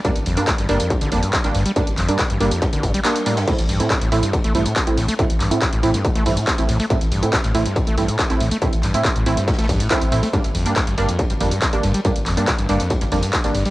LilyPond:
<<
  \new Staff \with { instrumentName = "Synth stab" } { \time 4/4 \key a \phrygian \tempo 4 = 140 <g bes d'>16 r8 <g bes d'>16 r8 <g bes d'>16 r8. <g bes d'>16 r8 <g bes d'>16 r8 | <g bes d'>16 r8 <g bes d'>16 r8 <g bes d'>16 r4 r16 <g bes d'>8 <g bes d'>16 r16 | <a c' e'>16 r8 <a c' e'>16 r8 <a c' e'>16 r8. <a c' e'>16 r8 <a c' e'>16 r8 | <a c' e'>16 r8 <a c' e'>16 r8 <a c' e'>16 r8. <a c' e'>16 r8 <a c' e'>16 r8 |
<a c' e'>16 r8 <a c' e'>16 r8 <a c' e'>16 r8. <a c' e'>16 r8 <a c' e'>16 r8 | <a c' e'>16 r8 <a c' e'>16 r8 <a c' e'>16 r4 r16 <a c' e'>8 <a c' e'>16 r16 | <g bes d'>16 r8 <g bes d'>16 r8 <g bes d'>16 r8. <g bes d'>16 r8 <g bes d'>16 r8 | <g bes d'>16 r8 <g bes d'>16 r8 <g bes d'>16 r8. <g bes d'>16 r8 <g bes d'>16 r8 | }
  \new Staff \with { instrumentName = "Acid bass" } { \clef bass \time 4/4 \key a \phrygian g,16 r16 f,16 g,16 g,16 g,16 g,16 f,16 g,16 d16 f,16 g,16 r8 g,16 g16 | g,16 r16 f,16 g,16 g,16 g,16 g,16 f,16 g,16 d16 g,16 g16 r8 a,16 g,16 | a,16 r16 g,16 a,16 a,16 a,16 a,16 g,16 a,16 a16 g,16 a,16 r8 a,16 a16 | a,16 r16 g,16 a,16 a,16 a,16 a,16 g,16 a,16 a16 g,16 a,16 r8 a,16 a16 |
a,16 r16 g,16 a,16 r16 a,16 a,16 g,16 a,16 a16 g,16 a,16 r8 a,16 a16 | a,16 r16 g,16 a,16 r16 a,16 a,16 g,16 a,16 a16 g,16 a,16 r8 a,16 a16 | g,16 r16 f,16 g,16 r16 g,16 g,16 f,16 g,16 g,16 f,16 g,16 r8 g,16 g16 | g,16 r16 f,16 g,16 r16 g,16 g,16 f,16 g,16 g,16 f,16 g,16 r8 g,16 g16 | }
  \new Staff \with { instrumentName = "Sub bass" } { \clef bass \time 4/4 \key a \phrygian r16 g,,16 g,,16 r8 g,,16 g,,16 r8 g,,16 g,,16 r8 g,,16 g,,16 r16 | r16 g,,16 g,,16 r8 g,,16 g,,16 r8 g,,16 g,,16 r4 r16 | r16 a,,16 a,,16 r8 a,,16 a,,16 r8 a,,16 a,,16 r8 a,,16 a,,16 r16 | r16 a,,16 a,,16 r8 a,,16 a,,16 r8 a,,16 a,,16 r8 a,,16 a,,16 r16 |
r16 a,,16 a,,16 r8 a,,16 a,,16 r8 a,,16 a,,16 r8 a,,16 a,,16 r16 | r16 a,,16 a,,16 r8 a,,16 a,,16 r8 a,,16 a,,16 r8 a,,16 a,,16 r16 | r16 g,,16 g,,16 r8 g,,16 g,,16 r8 g,,16 g,,16 r8 g,,16 g,,16 r16 | r16 g,,16 g,,16 r8 g,,16 g,,16 r8 g,,16 g,,16 r8 g,,16 g,,16 r16 | }
  \new DrumStaff \with { instrumentName = "Drums" } \drummode { \time 4/4 <hh bd cymr>16 <hh sn>16 <hho cymr>16 hh16 <hc hh bd cymr sn>16 <hh sn>16 <hho cymr>16 <hh cymr>16 <hh bd cymr>16 hh16 <hho cymr>16 hh16 <hc hh bd cymr sn>16 <hh sn>16 <hho cymr sn>16 <hh cymr>16 | <hh bd cymr>16 <hh cymr>16 <hc hho cymr>16 hh16 <hc hh bd cymr sn>16 hh16 <hho cymr>16 hh16 <hh bd cymr sn>16 <hh sn>16 <hho bd cymr>16 <hh cymr>16 <hc hh cymr sn>16 <hh sn>16 <hho cymr>16 <hho cymr sn>16 | <cymc hh bd cymr>16 <hh sn>16 <hho cymr>16 hh16 <hc hh bd cymr sn>16 <hh sn>16 <hho cymr>16 <hh cymr>16 <hh bd cymr>16 hh16 <hho cymr>16 hh16 <hc hh bd cymr sn>16 <hh sn>16 <hho cymr sn>16 <hh cymr>16 | <hh bd cymr>16 <hh cymr>16 <hc hho cymr>16 hh16 <hc hh bd cymr sn>16 hh16 <hho cymr>16 <hh sn>16 <hh bd cymr>16 <hh sn>16 hho16 <hh cymr>16 <hc hh bd cymr sn>16 <hh sn>16 <hho cymr>16 hho16 |
<hh bd cymr>16 <hh sn>16 <hho cymr>16 hh16 <hc hh bd cymr sn>16 <hh sn>16 <hho cymr>16 <hh cymr>16 <hh bd cymr>16 hh16 <hho cymr>16 hh16 <hc hh bd cymr sn>16 <hh sn>16 <hho cymr sn>16 <hh cymr>16 | <hh bd cymr>16 <hh cymr>16 <hc hho cymr>16 <hh sn>16 <hc hh bd cymr>16 hh16 <hho cymr>16 <hh sn>16 <hh bd cymr sn>32 <cymr sn>32 <hh cymr sn>32 <cymr sn>32 <hho bd>16 <hh cymr>16 <hc hh bd cymr sn>16 <hh sn>16 <hho cymr>16 hho16 | <hh bd cymr>16 <hh sn>16 <hho cymr>16 hh16 <hc hh bd cymr sn>16 <hh sn>16 <hho cymr>16 <hh cymr>16 <hh bd cymr>16 hh16 <hho cymr>16 hh16 <hc hh bd cymr sn>16 <hh sn>16 <hho cymr sn>16 <hh cymr>16 | <hh bd cymr>16 <hh cymr>16 <hc hho cymr>16 hh16 <hc hh bd cymr sn>16 hh16 <hho cymr>16 <hh sn>16 <hh bd cymr>16 <hh sn>16 hho16 <hh cymr>16 <hc hh bd cymr sn>16 <hh sn>16 <hho cymr>16 hho16 | }
>>